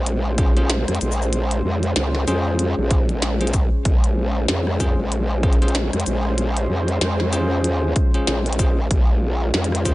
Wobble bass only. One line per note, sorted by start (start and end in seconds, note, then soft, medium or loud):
0.00 0.85 A#1 loud
0.88 0.99 F2 loud
1.01 1.62 A#1 loud
1.65 1.94 F2 loud
1.96 2.25 C#2 loud
2.28 2.75 F2 loud
2.78 3.70 A#1 loud
3.85 4.47 A#1 loud
4.49 4.96 F2 loud
4.99 5.91 A#1 loud
5.94 6.04 F2 loud
6.06 6.68 A#1 loud
6.69 6.99 F2 loud
7.01 7.66 F2 loud
7.66 7.94 E2 loud
8.27 8.89 A#1 loud
8.91 9.52 A#1 loud
9.54 9.94 F2 loud